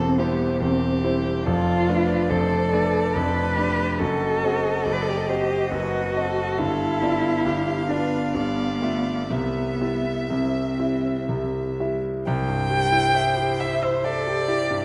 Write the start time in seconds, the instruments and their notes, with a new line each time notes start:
Already playing: grand piano E1 E2 G3 E4 C5, cello C4, violin A4 C5
0.18 grand piano G3 E4 C5, cello B3, violin G4
0.60 grand piano E1 E2, cello C4, violin G4
1.04 grand piano G3 E4 C5
1.45 grand piano F1 F2, cello F4, violin A4 D5
1.89 grand piano A3 D4 D5, violin B4
2.30 grand piano F1 F2, cello A4, violin C5
2.73 grand piano A3 D4 D5, violin B4
3.15 grand piano F1 F2, violin A4, cello B4
3.56 grand piano A3 D4 D5, violin G4
3.99 grand piano F#1 F#2, violin F#4 D#5, cello A4
4.44 grand piano C4 F#4 D#5
4.84 grand piano F#1 F#2, violin D5
4.93 cello B4
5.01 cello A4
5.09 cello G4
5.18 cello A4
5.27 grand piano C4 F#4 D#5, cello G4, violin C5
5.71 grand piano F#1 F#2, cello F#4, violin B4
6.15 grand piano C4 F#4 D#5, violin A4
6.58 grand piano G1 G2, cello E4, violin F5
7.02 grand piano B3 F4 D5
7.45 grand piano G1 G2, violin G4
7.89 grand piano B3 F4 D5, cello D4, violin B4
8.34 grand piano G1 G2, cello B3, violin D5
8.82 grand piano A3 F4 E5
9.29 grand piano C2 C3, cello B3, violin E5
9.81 grand piano G3 E4 E5
10.29 grand piano C2 C3, cello C4
10.79 grand piano G3 E4 E5
11.29 grand piano C2 C3
11.80 grand piano G3 E4 E5
12.26 grand piano C2, violin C5 G5
12.48 grand piano G2
12.70 grand piano G3
12.92 grand piano E4
13.15 cello E4, grand piano E5
13.37 grand piano G4
13.60 violin E5, grand piano E5
13.83 violin C5, grand piano E6
14.04 cello A4, violin D5, grand piano E5
14.27 grand piano G4
14.48 grand piano E4, cello G4
14.71 grand piano G2